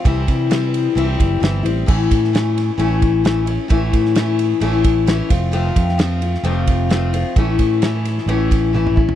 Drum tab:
CC |----------------|x---------------|----------------|----------------|
RD |x-x-x-x-x-x-x-x-|--x-x-x-x-x-x-x-|x-x-x-x-x-x-x-x-|x-x-x-x-x-x-x-x-|
SD |----o-------o---|---oo-o-----o---|---oo-------o---|---oo--o----o---|
T1 |----------------|----------------|----------------|----------------|
T2 |----------------|----------------|----------------|----------------|
FT |----------------|----------------|----------------|----------------|
BD |o-o-------o-----|o-o-------o-----|o-o-------o---o-|--o-------o-----|

CC |----------------|
RD |x-x-x-x-x-x-----|
SD |----o-oo--------|
T1 |------------o---|
T2 |-------------o--|
FT |---------------o|
BD |o-o-------o---o-|